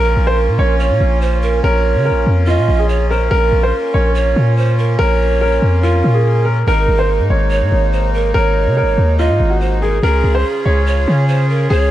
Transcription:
Already playing: A#1 A#3 C#4 F4 A#4
0.16 A#1
0.27 C5
0.48 A#2
0.58 A#1 C#5
0.80 C#5
0.90 A#2
1.00 A#1
1.21 C5
1.42 A#4
1.63 A#1 A#4 C#5
1.95 C#3
2.05 A#4
2.11 A#1
2.26 F2
2.47 F4 D#5
2.58 A#2
2.68 A#1
2.79 G#4
2.89 C#5
3.10 A#4 C5
3.31 A#1 A#4
3.52 A#1
3.63 C5
3.94 A#1 C#5
4.15 C#5
4.36 A#2
4.57 C5
4.78 A#4
4.99 A#1 A#4 C#5
5.41 A#4
5.62 F2
5.83 F4 A#4
6.04 A#2
6.14 G#4
6.45 A#4
6.67 G#1 G#3 D#4 A#4
6.88 G#1
6.99 C5
7.19 G#2
7.30 G#1 C#5
7.51 C#5
7.61 G#2
7.72 G#1
7.93 C5
8.14 A#4
8.34 G#1 A#4 C#5
8.66 C3
8.77 A#4
8.82 G#1
8.98 D#2
9.18 F4 D#5
9.29 G#2
9.40 G#1
9.50 F#4
9.61 C5
9.82 G#4 A#4
10.03 C#2 C#3 C#4 F4 G#4 A#4
10.23 C#2
10.35 C5
10.65 C#2 C#5
10.86 C#5
11.07 C#3
11.28 C5
11.49 A#4
11.70 C#2 G#4 C#5

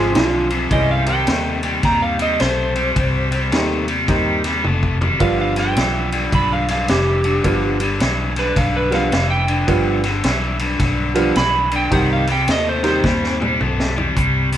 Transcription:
Already playing: G#1 F2 C3 F3 G#3 C4 F4 G#4
0.15 B1 F2 D3 F4, snare, ride
0.50 F2 C3, ride
0.71 C2 C3 E3 G3 G#3 C#4 E4 G#4 D#5, kick, ride
0.91 F5
1.06 C3 D#3 G3 C4 D#4 G4 G5, ride
1.27 D#2 C3 A3, snare, ride
1.63 C3 G3, ride
1.83 D#2 C3 G3 A#5, kick, snare, ride
2.02 F5
2.19 C3 G3 D#5, ride
2.40 B1 C3 A3 C5, snare, ride
2.75 C3 G3, ride
2.96 C2 C3 G3, kick, ride
3.31 C3 G3, ride
3.52 D#2 C3 D#3 G3 A3 C4 D#4 G4, snare, ride
3.88 C3 G3, ride
4.08 D#2 C3 D#3 G3 C4 D#4 G4, kick, snare, ride
4.44 C3 G3, snare, ride
4.64 F1 C3 A3, high tom
4.83 kick
5.01 C3 G3, floor tom
5.20 G1 G2 D3 F3 G3 B3 D4 F4 F5, kick, ride
5.41 F5
5.56 G2 D3 G5, snare, ride
5.76 B1 G2 E3, snare, ride
6.12 G2 D3, ride
6.32 B1 G2 D3 B5, kick, ride
6.53 F5
6.68 G2 D3 F5, snare, ride
6.88 F1 G2 E3 G4, snare, ride
7.24 G2 D3, ride
7.44 G1 G2 D3 F3 G3 B3 D4 F4, kick, ride
7.80 G2 D3, ride
8.00 B1 G2 E3, snare, ride
8.36 G2 D3 B4, snare, ride
8.56 B1 G2 D3 F5, kick, snare, ride
8.76 B4
8.90 G2 D3 F3 G3 B3 D4 F4, snare, ride
8.94 F5
9.12 F1 G2 E3, snare, ride
9.30 G5
9.47 G2 D3, ride
9.67 G1 G2 D3 F3 G3 B3 D4 F4, kick, ride
10.04 G2 D3, snare, ride
10.24 B1 G2 E3, snare, ride
10.59 G2 D3, ride
10.80 B1 G2 D3, kick, snare, ride
11.15 G2 D3 F3 G3 B3 D4 F4, ride
11.36 B1 G2 E3 B5, snare, ride
11.71 G2 D3, ride
11.76 G5
11.91 C2 C3 D#3 G3 C4 D#4 G4 F#5, kick, ride
12.13 F5
12.27 C3 G3, snare, ride
12.32 G5
12.48 D#2 C3 A3 D#5, snare, ride
12.68 C5
12.83 C3 D#3 G3 C4 D#4 G4, snare, ride
12.88 C5
13.04 D#2 C3 G3, kick, snare
13.24 snare
13.40 C3 G3, mid tom
13.61 B1 C3 A3, mid tom
13.80 snare
13.96 C3 G3, floor tom
14.17 C2 C3 G3, kick, closed hi-hat
14.52 C3 G3, snare, closed hi-hat

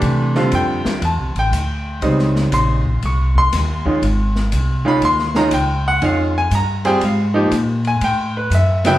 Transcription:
Already playing: E3 A3 D4 G4
0.01 C3, ride
0.35 D3 G3 C4 F4, snare
0.52 F2 G5, hi-hat pedal, ride
0.85 muted upright bass stroke, snare
1.02 E2 A5, ride
1.18 C2
1.35 A1 G5, ride
1.51 D2, hi-hat pedal, ride
2.01 C#2 C#3 G3 C4 D#4, ride
2.19 snare
2.36 snare
2.52 A#1 C6, hi-hat pedal, ride
2.85 kick
3.02 C2 C#6, ride
3.35 C6, kick
3.53 D#2, snare, hi-hat pedal, ride
3.85 D#3 G#3 C#4 F4, kick
4.02 G#1, ride
4.36 snare
4.52 C2, hi-hat pedal, ride
4.85 D#3 G#3 C#4 F4 B5
5.02 D#2 C6, ride
5.19 snare
5.35 D#3 G#3 C#4 F4 A#5, snare
5.51 C#2 G5, hi-hat pedal, ride
5.88 F#5
6.01 F2 D#3 G#3 C#4 F4, ride
6.05 F5
6.38 G#5
6.51 G2, hi-hat pedal, ride
6.55 A#5
6.85 G3 C4 F4 G#4 G5, ride
7.01 G#2 F5, ride
7.34 F3 A#3 D#4 G4
7.51 A#2, hi-hat pedal, ride
7.85 G#5, ride
8.01 A2 G5, ride
8.37 B4
8.50 F#2, hi-hat pedal, ride
8.55 E5
8.85 C#3 F#3 B3 E4 G5, snare, ride

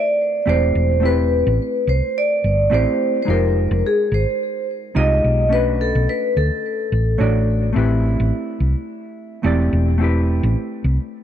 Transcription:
Already playing: A3 C4 E4 G4 B4 D5
0.46 E1 A3 C4 E4 G4 C5 D5
0.75 E1
1.00 A3 C4 E4
1.05 G4 B4
1.47 A1
1.87 C2 C5
2.18 D5
2.44 G1
2.70 A1 A3 C4 E4 G4 D5
2.74 C5
3.23 G#3 C5
3.27 F1 D#4 F4 G4 A#4
3.31 C5
3.71 F1
3.86 G#4
4.12 G#1 C5
4.95 C2 G#3 D#4 F4 G4 D#5
5.24 B1
5.49 A3 C#4 D4 B4
5.53 F#4 B4
5.81 A4
5.95 B1
6.09 B4
6.37 D2 A4
6.92 A1
7.18 A1 A3 D4 F#4 C#5 D5
7.73 A1 A3 C4 E4
7.77 G4 B4
8.20 A1
8.60 C2
9.43 E1 A3 C4 E4 G4 D5
9.73 E1
9.98 A3 C4 E4
10.02 G4 B4
10.43 A1
10.84 C2

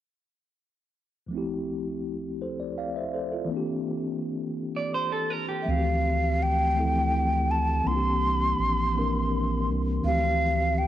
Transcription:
1.27 D2 F3
1.31 A3 C4
1.35 E4 G4
2.42 A4 C5
2.60 D5
2.78 D5 F5
2.96 C5 E5
3.14 A4 C5
3.32 F4 A4
3.45 E3 A#3
3.50 C4 D4
3.56 G4
4.76 D5
4.94 C5
5.12 A4
5.30 A#4
5.49 G4
5.63 F3 A3 E5
5.68 D2 E3 C4 F#4 F5
5.77 G4
6.43 G5
6.74 E3 A3 C4
6.78 F3 E4 A4
7.51 A5
7.84 C2 E3 A#3 C4 C6
7.88 D4 F4
7.96 G4
8.59 A#1
8.93 E3 A#3 C4
8.97 D4 A#4
9.68 C2
10.02 D2 E3 A3 C4 F5
10.07 E3 F3 G4
10.78 G5

